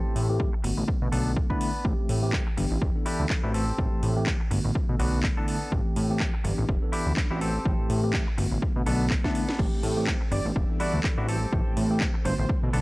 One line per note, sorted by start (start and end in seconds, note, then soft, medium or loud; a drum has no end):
0.00 0.26 E3 medium
0.00 0.26 A3 medium
0.00 0.26 C4 medium
0.00 0.26 G4 medium
0.00 0.27 A4 loud
0.05 0.13 A2 soft
0.15 0.45 A2 medium
0.15 open hi-hat loud
0.29 0.48 E3 medium
0.29 0.48 A3 medium
0.29 0.48 C4 medium
0.29 0.49 G4 loud
0.29 shaker medium
0.40 muted clean electric guitar stroke soft
0.40 kick loud
0.53 muted clean electric guitar stroke medium
0.64 0.72 G1 medium
0.64 0.98 D3 medium
0.64 0.98 A3 medium
0.64 0.99 B3 medium
0.64 0.99 F#4 medium
0.64 muted clean electric guitar stroke loud
0.64 open hi-hat loud
0.77 0.84 A1 medium
0.77 muted clean electric guitar stroke soft
0.88 muted clean electric guitar stroke soft
0.88 kick loud
1.02 1.08 B2 loud
1.02 1.47 D3 medium
1.02 1.47 A3 medium
1.02 1.47 B3 medium
1.02 1.47 A4 medium
1.12 1.42 B1 medium
1.12 1.31 B3 loud
1.12 1.31 D4 medium
1.12 1.31 A4 loud
1.12 open hi-hat loud
1.37 kick loud
1.50 1.69 D3 medium
1.50 1.69 A3 medium
1.50 1.85 B3 medium
1.50 1.70 B3 medium
1.50 1.85 D4 medium
1.50 1.70 E4 loud
1.50 1.85 B4 medium
1.50 kick medium
1.61 open hi-hat loud
1.75 shaker medium
1.84 1.93 A1 loud
1.84 2.19 E3 medium
1.84 2.19 A3 medium
1.84 2.20 C4 medium
1.84 2.20 G4 medium
1.84 kick loud
2.09 2.39 A2 medium
2.09 open hi-hat loud
2.22 2.42 E3 medium
2.22 2.42 A3 medium
2.22 2.42 C4 medium
2.22 2.42 G4 loud
2.22 shaker medium
2.33 muted clean electric guitar stroke soft
2.33 kick loud
2.33 clap loud
2.47 muted clean electric guitar stroke medium
2.57 2.66 G1 medium
2.57 2.92 E3 medium
2.57 2.92 B3 medium
2.57 2.92 D4 medium
2.57 2.92 G4 medium
2.57 muted clean electric guitar stroke loud
2.57 open hi-hat loud
2.71 2.78 A1 medium
2.71 muted clean electric guitar stroke soft
2.82 2.90 E1 medium
2.82 muted clean electric guitar stroke soft
2.82 kick loud
2.95 3.40 E3 medium
2.95 3.40 B3 medium
2.95 3.41 D4 medium
2.95 3.41 A4 medium
2.95 shaker soft
3.06 3.25 D4 loud
3.06 3.25 E4 loud
3.06 3.25 G4 loud
3.06 open hi-hat loud
3.20 3.26 D2 loud
3.30 kick loud
3.30 clap loud
3.43 3.72 A1 medium
3.43 3.63 E3 medium
3.43 3.63 A3 medium
3.43 3.63 C4 medium
3.43 3.53 D4 medium
3.43 3.54 E4 medium
3.43 3.63 F#4 loud
3.43 3.53 G4 medium
3.54 4.13 C4 medium
3.54 4.14 G4 medium
3.54 4.14 A4 loud
3.54 open hi-hat loud
3.67 shaker medium
3.78 3.87 A1 loud
3.78 4.13 E3 medium
3.78 4.13 A3 medium
3.78 4.13 C4 medium
3.78 4.13 G4 medium
3.78 kick loud
3.92 4.01 A2 soft
3.92 shaker soft
4.03 4.32 A2 medium
4.03 open hi-hat loud
4.16 4.35 E3 medium
4.16 4.35 A3 medium
4.16 4.35 C4 medium
4.16 4.36 G4 loud
4.16 shaker medium
4.26 muted clean electric guitar stroke soft
4.26 kick loud
4.26 clap loud
4.40 muted clean electric guitar stroke medium
4.51 4.59 G1 medium
4.51 4.85 D3 medium
4.51 4.86 A3 medium
4.51 4.86 B3 medium
4.51 4.86 F#4 medium
4.51 muted clean electric guitar stroke loud
4.51 open hi-hat loud
4.64 4.71 A1 loud
4.64 muted clean electric guitar stroke soft
4.75 muted clean electric guitar stroke soft
4.75 kick loud
4.88 4.95 B2 loud
4.88 5.34 D3 medium
4.88 5.34 A3 medium
4.88 5.34 B3 medium
4.88 5.34 A4 medium
4.99 5.29 B1 loud
4.99 5.18 B3 loud
4.99 5.18 D4 loud
4.99 5.18 F#4 loud
4.99 open hi-hat loud
5.23 kick loud
5.23 clap loud
5.37 5.56 D3 medium
5.37 5.56 A3 medium
5.37 5.56 B3 medium
5.37 5.72 B3 medium
5.37 5.72 D4 medium
5.37 5.57 E4 loud
5.37 5.72 A4 loud
5.48 open hi-hat loud
5.71 5.80 A1 loud
5.71 6.06 E3 medium
5.71 6.06 A3 medium
5.71 6.06 C4 medium
5.71 6.07 G4 medium
5.71 kick loud
5.85 shaker soft
5.96 6.26 A2 medium
5.96 open hi-hat loud
6.09 6.29 E3 medium
6.09 6.29 A3 medium
6.09 6.29 C4 medium
6.09 6.29 G4 loud
6.09 shaker medium
6.20 muted clean electric guitar stroke soft
6.20 kick loud
6.20 clap loud
6.34 muted clean electric guitar stroke medium
6.44 6.53 G1 medium
6.44 6.79 E3 medium
6.44 6.79 B3 medium
6.44 6.79 D4 medium
6.44 6.79 G4 medium
6.44 muted clean electric guitar stroke loud
6.44 open hi-hat medium
6.58 6.65 A1 medium
6.58 muted clean electric guitar stroke soft
6.69 6.77 E1 medium
6.69 muted clean electric guitar stroke soft
6.69 kick loud
6.82 7.27 E3 medium
6.82 7.28 B3 medium
6.82 7.28 D4 medium
6.82 7.28 A4 medium
6.82 shaker soft
6.92 7.12 D4 medium
6.92 7.12 E4 loud
6.92 7.12 G4 loud
6.92 open hi-hat loud
7.07 7.13 D2 loud
7.07 shaker medium
7.17 kick loud
7.17 clap loud
7.30 7.59 A1 medium
7.30 7.50 E3 medium
7.30 7.50 A3 medium
7.30 7.50 C4 medium
7.30 7.41 D4 medium
7.30 7.41 E4 medium
7.30 7.50 F#4 loud
7.30 7.40 G4 medium
7.41 8.01 C4 medium
7.41 8.01 G4 medium
7.41 8.01 A4 loud
7.41 open hi-hat medium
7.55 shaker medium
7.65 7.74 A1 loud
7.65 8.00 E3 medium
7.65 8.00 A3 medium
7.65 8.00 C4 medium
7.65 8.00 G4 medium
7.65 kick loud
7.79 7.88 A2 soft
7.79 shaker soft
7.90 8.19 A2 medium
7.90 open hi-hat medium
8.03 8.22 E3 medium
8.03 8.22 A3 medium
8.03 8.23 C4 medium
8.03 8.23 G4 loud
8.03 shaker medium
8.13 muted clean electric guitar stroke soft
8.13 kick loud
8.13 clap loud
8.27 muted clean electric guitar stroke medium
8.38 8.47 G1 medium
8.38 8.73 D3 medium
8.38 8.73 A3 medium
8.38 8.73 B3 medium
8.38 8.73 F#4 medium
8.38 muted clean electric guitar stroke loud
8.38 open hi-hat loud
8.52 8.58 A1 medium
8.52 muted clean electric guitar stroke soft
8.52 shaker medium
8.62 muted clean electric guitar stroke soft
8.62 kick loud
8.75 8.82 B2 loud
8.75 9.21 D3 medium
8.75 9.21 A3 medium
8.75 9.21 B3 medium
8.75 9.21 A4 medium
8.75 shaker soft
8.86 9.16 B1 loud
8.86 9.05 B3 loud
8.86 9.05 D4 loud
8.86 9.05 A4 loud
8.86 open hi-hat loud
9.00 shaker medium
9.10 kick loud
9.10 clap loud
9.24 9.43 D3 medium
9.24 9.43 A3 medium
9.24 9.59 B3 medium
9.24 9.44 B3 medium
9.24 9.59 D4 medium
9.24 9.44 E4 loud
9.24 9.59 A4 loud
9.24 kick medium
9.24 snare medium
9.35 open hi-hat medium
9.49 snare medium
9.59 9.68 A1 loud
9.59 9.93 E3 medium
9.59 9.94 A3 medium
9.59 9.94 C4 medium
9.59 10.55 C4 medium
9.59 9.94 G4 loud
9.59 10.55 A4 medium
9.59 10.55 G5 medium
9.59 kick loud
9.59 crash medium
9.83 10.13 A2 medium
9.83 open hi-hat loud
9.96 10.16 E3 medium
9.96 10.16 A3 medium
9.96 10.16 C4 medium
9.96 10.16 G4 loud
10.07 muted clean electric guitar stroke soft
10.07 kick loud
10.07 clap loud
10.21 muted clean electric guitar stroke medium
10.31 10.40 G1 medium
10.31 10.66 E3 medium
10.31 10.66 B3 medium
10.31 10.66 D4 medium
10.31 10.66 G4 medium
10.31 10.45 D5 loud
10.31 muted clean electric guitar stroke loud
10.31 open hi-hat loud
10.45 10.52 A1 medium
10.45 muted clean electric guitar stroke soft
10.45 shaker medium
10.56 10.64 E1 medium
10.56 11.28 G3 medium
10.56 11.28 D4 medium
10.56 11.28 E5 medium
10.56 muted clean electric guitar stroke soft
10.56 kick loud
10.69 11.14 E3 medium
10.69 11.14 B3 medium
10.69 11.15 D4 medium
10.69 11.15 A4 medium
10.69 shaker soft
10.80 10.99 D4 loud
10.80 10.99 E4 loud
10.80 10.99 F#4 loud
10.80 10.93 D5 medium
10.80 open hi-hat loud
10.94 11.00 D2 loud
11.04 kick loud
11.04 clap loud
11.17 11.46 A1 loud
11.17 11.37 E3 loud
11.17 11.37 A3 medium
11.17 11.37 C4 medium
11.17 11.28 D4 medium
11.17 11.28 E4 medium
11.17 11.28 F#4 loud
11.17 11.37 F#4 loud
11.28 12.48 C4 medium
11.28 11.88 C4 medium
11.28 11.88 G4 medium
11.28 12.48 A4 medium
11.28 11.88 A4 loud
11.28 12.48 G5 medium
11.28 open hi-hat loud
11.42 shaker medium
11.52 11.61 A1 loud
11.52 11.87 E3 medium
11.52 11.87 A3 medium
11.52 11.87 C4 medium
11.52 11.87 G4 loud
11.52 kick loud
11.66 11.75 A2 soft
11.66 shaker soft
11.77 12.06 A2 medium
11.77 open hi-hat loud
11.90 12.09 E3 medium
11.90 12.10 A3 medium
11.90 12.10 C4 medium
11.90 12.10 G4 loud
11.90 shaker medium
12.00 muted clean electric guitar stroke soft
12.00 kick loud
12.00 clap loud
12.14 muted clean electric guitar stroke medium
12.25 12.34 G1 medium
12.25 12.60 D3 medium
12.25 12.60 A3 medium
12.25 12.60 B3 medium
12.25 12.60 F#4 medium
12.25 12.34 C5 medium
12.25 muted clean electric guitar stroke loud
12.25 open hi-hat loud
12.38 12.45 A1 medium
12.38 12.45 C5 medium
12.38 muted clean electric guitar stroke soft
12.38 shaker medium
12.49 12.81 D4 medium
12.49 12.81 B4 medium
12.49 12.81 A5 medium
12.49 muted clean electric guitar stroke soft
12.49 kick loud
12.63 12.70 B2 loud
12.63 12.81 D3 medium
12.63 12.81 A3 medium
12.63 12.81 B3 medium
12.63 12.81 A4 medium
12.63 shaker soft
12.73 12.81 B1 medium
12.73 12.81 B3 loud
12.73 12.81 D4 loud
12.73 12.81 A4 loud
12.73 open hi-hat loud